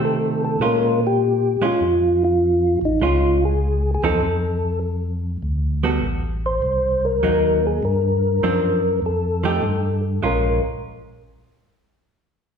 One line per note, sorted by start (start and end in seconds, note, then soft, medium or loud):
0.00 0.56 C3 medium
0.00 0.57 D#3 medium
0.00 0.58 A3 medium
0.00 0.58 C4 medium
0.05 0.43 A4 medium
0.45 0.61 A4 medium
0.60 1.57 A#2 medium
0.60 0.98 G#3 medium
0.60 0.98 C#4 medium
0.60 0.98 F4 medium
0.64 1.00 A#4 medium
1.07 1.66 G4 medium
1.61 1.71 A#2 soft
1.61 1.79 G#3 medium
1.61 1.79 C#4 medium
1.61 1.79 F4 medium
1.65 2.23 F4 medium
1.80 2.78 F2 medium
2.24 2.79 F4 medium
2.81 3.00 A1 medium
2.81 3.02 D#4 medium
3.00 3.98 C#2 medium
3.00 3.38 G#3 soft
3.00 3.39 C#4 medium
3.00 3.44 F4 medium
3.00 3.39 F4 soft
3.45 3.91 G#4 medium
3.95 4.03 G#4 medium
4.02 4.20 E2 medium
4.02 4.20 F3 medium
4.02 4.20 C4 medium
4.02 4.21 D#4 medium
4.02 4.21 A4 medium
4.02 4.79 A4 medium
4.21 5.37 F2 medium
5.42 6.00 D2 medium
5.83 6.00 G3 medium
5.83 6.00 B3 medium
5.83 6.01 F#4 medium
5.83 6.01 A4 medium
6.02 6.60 A1 medium
6.46 7.06 C5 medium
6.62 7.20 C2 medium
7.05 7.66 A#4 medium
7.23 7.81 D#2 medium
7.23 7.59 F#3 medium
7.23 7.60 A#3 medium
7.23 7.60 D#4 medium
7.67 7.85 G#4 medium
7.83 8.41 G2 medium
7.83 9.00 A#4 medium
8.43 9.01 F#2 medium
8.43 8.80 F3 medium
8.43 8.80 C4 medium
8.43 8.80 D4 medium
9.02 9.61 F2 medium
9.02 10.01 A4 medium
9.44 9.61 F3 medium
9.44 9.61 A3 medium
9.44 9.61 D#4 medium
9.44 9.62 G4 medium
9.62 10.21 G2 medium
10.23 10.61 A#1 medium
10.23 10.59 G#3 medium
10.23 10.60 C#4 medium
10.23 10.60 F4 medium
10.23 10.62 A#4 medium